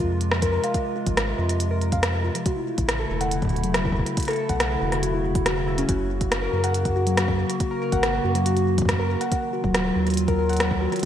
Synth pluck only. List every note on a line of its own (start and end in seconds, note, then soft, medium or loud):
0.42 0.52 A#4 loud
0.53 0.61 A#4 loud
0.64 0.72 F5 medium
0.96 1.04 F4 medium
1.07 1.15 F3 medium
1.17 1.22 F4 medium
1.28 1.36 F4 medium
1.71 1.80 A#4 loud
1.82 1.90 A#4 loud
1.92 2.00 F5 medium
2.24 2.33 F4 medium
2.35 2.43 F3 medium
2.46 2.51 F#4 medium
2.57 2.65 E4 medium
3.00 3.09 A4 loud
3.10 3.18 A4 loud
3.21 3.29 F#5 medium
3.53 3.61 F#4 medium
3.64 3.72 F#3 medium
3.75 3.79 F#4 medium
3.85 3.93 E4 medium
4.28 4.38 A4 loud
4.39 4.47 A4 loud
4.50 4.58 F#5 medium
4.82 4.90 F#4 medium
4.92 5.00 F#3 medium
5.03 5.08 F#4 medium
5.14 5.22 E4 medium
5.46 5.55 F#4 loud
5.57 5.65 F#4 medium
5.67 5.78 E4 medium
5.78 5.83 C#4 loud
5.89 5.94 F#4 medium
6.00 6.08 F#4 medium
6.42 6.52 A#4 loud
6.53 6.61 A#4 loud
6.64 6.72 F#5 medium
6.96 7.04 F#4 medium
7.07 7.15 F#3 medium
7.17 7.22 F#4 medium
7.28 7.36 F#4 medium
7.71 7.80 A#4 loud
7.82 7.90 A#4 loud
7.92 8.00 F#5 medium
8.25 8.33 F#4 medium
8.35 8.43 F#3 medium
8.46 8.51 F#4 medium
8.57 8.65 F#4 medium
8.99 9.09 A#4 loud
9.10 9.18 A#4 loud
9.21 9.29 F#5 medium
9.53 9.61 F#4 medium
9.64 9.72 F#3 medium
9.75 9.79 F#4 medium
9.85 9.93 F#4 medium
10.28 10.38 A#4 loud
10.39 10.47 A#4 loud
10.50 10.58 F#5 medium
10.82 10.90 F#4 medium
10.92 11.01 F#3 medium